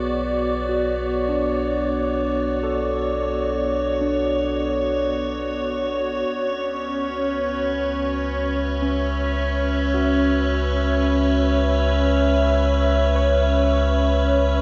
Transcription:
Already playing: B1 B3 F#4 G#4 C#5 D5
0.69 F#4
1.29 D4
2.63 A4
4.01 D4
6.27 C#2 C#4
6.51 B4
8.45 E5
8.82 C#4
9.94 F#4
13.16 C#5

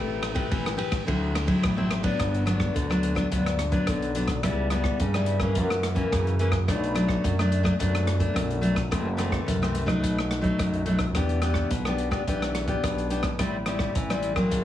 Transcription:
Already playing: A1 A3 C4 G4 B4
0.23 cross-stick, ride
0.34 C4 G4 B4, kick, ride
0.51 A1 E3, kick, ride
0.66 cross-stick
0.77 C4 G4 B4, ride
0.92 kick, cross-stick, ride
1.06 D2 D3 F#3 C4 E4, kick, ride
1.35 cross-stick, ride
1.47 F#3 C4 E4, kick, ride
1.63 A1 A2, kick, cross-stick, ride
1.77 F#3 C4 E4
1.91 cross-stick, ride
2.03 F#3 B3 D4, kick, ride
2.19 G1 G2, kick, cross-stick, closed hi-hat
2.34 closed hi-hat
2.46 F#3 B3 D4, cross-stick, closed hi-hat
2.60 kick, cross-stick
2.74 D2 D3, kick, closed hi-hat
2.90 F#3 B3 D4, cross-stick
3.03 closed hi-hat
3.15 F#3 B3 D4, kick, cross-stick
3.31 D2 G2 F#3 B3 D4, kick, closed hi-hat
3.46 cross-stick, closed hi-hat
3.59 cross-stick, closed hi-hat
3.72 F#3 B3 D4, kick, closed hi-hat
3.87 B1 D3, kick, cross-stick, closed hi-hat
4.02 closed hi-hat
4.15 F#3 B3 D4, closed hi-hat
4.28 kick, cross-stick, closed hi-hat
4.43 C#2 C#3 G3 B3 E4, kick, cross-stick, closed hi-hat
4.70 G3 B3 E4, cross-stick, closed hi-hat
4.84 kick, cross-stick
5.00 G2 C#3, kick, closed hi-hat
5.14 G3 B3 E4, cross-stick, closed hi-hat
5.26 closed hi-hat
5.40 E3 A#3 C#4, kick, cross-stick
5.55 F#2, kick, closed hi-hat
5.70 cross-stick
5.83 cross-stick, closed hi-hat
5.95 E3 A#3 C#4, kick, closed hi-hat
6.12 F#2 C#3, kick, cross-stick, closed hi-hat
6.27 closed hi-hat
6.39 E3 A#3 C#4, closed hi-hat
6.52 kick, cross-stick, closed hi-hat
6.68 B1 B2 F#3 A3 D4, kick, cross-stick, closed hi-hat
6.84 closed hi-hat
6.94 F#3 A3 D4, cross-stick, closed hi-hat
7.08 kick, cross-stick
7.24 F#2, kick, closed hi-hat
7.39 F#3 A3 D4, cross-stick
7.52 closed hi-hat
7.63 F#3 A3 D4, kick, cross-stick
7.79 F#2 B2 F#3 A3 D4, kick, closed hi-hat
7.95 cross-stick, closed hi-hat
8.07 cross-stick, closed hi-hat
8.20 F#3 A3 D4, kick, closed hi-hat
8.34 B1 F#2, kick, cross-stick, closed hi-hat
8.51 closed hi-hat
8.61 F#3 A3 D4, closed hi-hat
8.76 kick, cross-stick, closed hi-hat
8.91 F#1 F#2 E3 A3 C4, kick, cross-stick, closed hi-hat
9.17 E3 A3 C4, cross-stick, closed hi-hat
9.32 kick, cross-stick
9.46 C2 F#2, kick, closed hi-hat
9.62 E3 A3 C4, cross-stick, closed hi-hat
9.75 closed hi-hat
9.86 F#3 A3 D#4, kick, cross-stick
10.02 B1 B2, kick, closed hi-hat
10.19 cross-stick
10.31 cross-stick, closed hi-hat
10.41 F#3 A3 D#4, kick, closed hi-hat
10.59 B1 F#2, kick, cross-stick, closed hi-hat
10.74 closed hi-hat
10.86 F#3 A3 D#4, closed hi-hat
10.99 kick, cross-stick, closed hi-hat
11.15 E2 E3 B3 D4 G4, kick, cross-stick, closed hi-hat
11.29 closed hi-hat
11.42 B3 D4 G4, cross-stick, closed hi-hat
11.54 kick, cross-stick
11.70 B1 B2, kick, closed hi-hat
11.85 B3 D4 G4, cross-stick
11.98 closed hi-hat
12.11 B3 D4 G4, kick, cross-stick
12.27 B1 E3 B3 D4 G4, kick, closed hi-hat
12.42 cross-stick, closed hi-hat
12.55 cross-stick, closed hi-hat
12.67 B3 D4 G4, kick, closed hi-hat
12.83 B1 B2, kick, cross-stick, closed hi-hat
12.98 closed hi-hat
13.10 B3 D4 G4, closed hi-hat
13.23 kick, cross-stick, closed hi-hat
13.39 A1 A2 G3 C4 E4, kick, cross-stick, closed hi-hat
13.66 G3 C4 E4, cross-stick, closed hi-hat
13.79 kick, cross-stick
13.95 A1 E3, kick, closed hi-hat
14.10 G3 C4 E4, cross-stick, closed hi-hat
14.23 closed hi-hat
14.36 F#3 A#3 C4, kick, cross-stick
14.51 G#1 G#2, kick, closed hi-hat

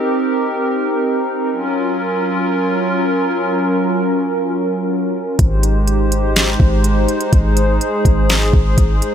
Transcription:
Already playing: C4 D#4 G4 A#4
1.52 F#3 C#4 F4 A#4
5.39 G#1 G#3 D#4 G4 C5, kick, closed hi-hat
5.63 closed hi-hat
5.88 closed hi-hat
6.12 closed hi-hat
6.36 snare, closed hi-hat
6.60 G#1, kick
6.84 closed hi-hat
7.09 closed hi-hat
7.21 closed hi-hat
7.32 G#1 G#4, kick, closed hi-hat
7.57 closed hi-hat
7.81 closed hi-hat
8.05 G#1, kick, closed hi-hat
8.30 snare, closed hi-hat
8.53 G#1, kick
8.78 G#1, kick, closed hi-hat
9.02 closed hi-hat

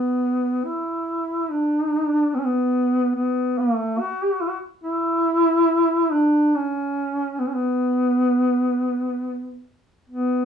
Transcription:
Already playing: B3
0.65 E4
1.51 D4
2.34 B3
2.39 C#4
2.45 B3
3.15 B3
3.59 A3
3.99 F#4
4.23 G4
4.32 F#4
4.41 E4
4.49 F#4
4.84 E4
6.12 D4
6.55 C#4
7.39 B3
7.48 C#4
7.54 B3
10.10 B3

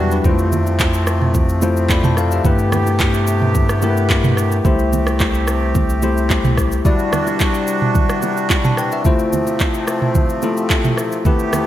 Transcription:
Already playing: E2 E3 F#3 G3 D4 E4 F#4 B4 D5 E5 G5
0.00 G4
0.11 D4 B4, shaker
0.24 F2 C3 F3 G3 A3 C4 E4 F4 C5, kick, low conga, shaker
0.31 A3
0.39 shaker
0.52 low bongo, low conga, shaker
0.66 high bongo, shaker
0.79 kick, clap, high bongo, shaker
0.94 shaker
1.07 cross-stick, shaker
1.22 mid tom
1.34 kick, low conga, shaker
1.49 shaker
1.62 A3 E4 F4 C5, high bongo, low bongo, shaker
1.77 shaker
1.90 D5 B5, kick, clap, high bongo, shaker
2.04 C5 A5, mid tom, low bongo, shaker
2.17 A4 F5, cross-stick, shaker
2.31 G4 E5, shaker
2.44 G2 A3 B3 E4 G4 B4, kick, low conga, shaker
2.59 shaker
2.72 cross-stick, low bongo, low conga, shaker
2.86 high bongo, shaker
3.00 kick, clap, high bongo, shaker
3.14 shaker
3.27 shaker
3.42 mid tom
3.54 kick, low conga, shaker
3.69 cross-stick, shaker
3.82 A3 E4 G4 A#4, high bongo, low bongo, shaker
3.90 B4
3.97 shaker
4.10 kick, clap, high bongo, shaker
4.24 mid tom, low bongo, shaker
4.37 cross-stick, shaker
4.52 shaker
4.65 C2 A3 C4 E4 G4 C5, kick, low conga, shaker
4.79 shaker
4.93 low bongo, low conga, shaker
5.06 cross-stick, high bongo, shaker
5.20 kick, clap, high bongo, shaker
5.34 shaker
5.47 cross-stick, shaker
5.75 kick, low conga, shaker
5.90 shaker
6.02 A3 E4 G4 C5, high bongo, low bongo, shaker
6.17 shaker
6.30 kick, clap, high bongo, shaker
6.44 mid tom, low bongo, shaker
6.57 kick, cross-stick, shaker
6.72 shaker
6.85 G3 D4 E4 F#4 D5, kick, low conga, shaker
6.99 shaker
7.13 cross-stick, low bongo, low conga, shaker
7.27 high bongo, shaker
7.40 kick, clap, high bongo, shaker
7.54 shaker
7.67 shaker
7.82 mid tom
7.95 kick, low conga, shaker
8.09 cross-stick, shaker
8.22 high bongo, low bongo, shaker
8.37 shaker
8.50 kick, clap, high bongo, shaker
8.64 A5, mid tom, low bongo, shaker
8.77 B4 G5, cross-stick, shaker
8.92 G4 E5, shaker
9.05 F3 A3 C4 E4 F4 C5, kick, low conga, shaker
9.19 shaker
9.33 low bongo, low conga, shaker
9.47 high bongo, shaker
9.60 kick, clap, high bongo, shaker
9.74 shaker
9.88 cross-stick, shaker
10.02 mid tom
10.15 kick, low conga, shaker
10.29 shaker
10.42 A3 E4 F4 A4, high bongo, low bongo, shaker
10.57 shaker
10.70 kick, clap, high bongo, shaker
10.84 mid tom, low bongo, shaker
10.97 cross-stick, shaker
11.12 shaker
11.25 A3 B3 E4 G4 B4, kick, low conga, shaker
11.39 shaker
11.53 cross-stick, low bongo, low conga, shaker

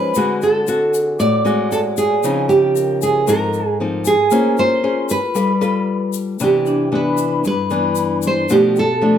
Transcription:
Already playing: F3 G#3 C#4 D#4 B4 C5 B5
0.15 D3 G#3 C4 F#4, shaker
0.42 A4 A5, shaker
0.67 C4 F#4, shaker
0.94 shaker
0.98 G#4
1.18 A2 D5 D6, shaker
1.45 G#3 C4 F#4, shaker
1.71 A4 A5, shaker
1.96 G#4 G#5, shaker
2.23 C#3 F3 C4 D#4, shaker
2.49 G4 G5, shaker
2.75 A#4, shaker
3.01 G#4 G#5, shaker
3.25 G#2 F3 C4 D#4 A#4 A#5, shaker
3.53 shaker
3.80 F3 C4 D#4
4.05 G#4 G#5, shaker
4.31 A#3 C#4 F4 G#4 C5, shaker
4.57 C5 C6, shaker
4.83 C#4 G#4 C5
5.09 B4 B5, shaker
5.35 G3 F4 A4 B4, shaker
5.61 F4 A4 B4, shaker
6.13 shaker
6.40 C3 E3 B3 D4 G5, shaker
6.44 G4
6.66 D4, shaker
6.92 E3 B3 D4 B4 B5
7.18 shaker
7.44 G2 B4 B5, shaker
7.70 E3 B3 D4, shaker
7.96 shaker
8.22 C6, shaker
8.27 C5
8.49 B2 F3 A3 D4 G4, shaker
8.54 G5
8.76 A4 A5, shaker
9.01 F3 A3 D4

